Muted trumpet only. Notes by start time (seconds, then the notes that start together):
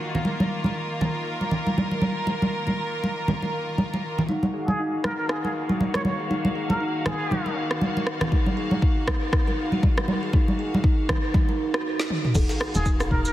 4.68 G#4
5.04 A#4
5.19 A#4
5.30 G#4
5.44 G#4
5.95 C#5
6.05 C#5
6.70 A#4
7.06 G#4
12.75 G#4
13.11 A#4
13.26 A#4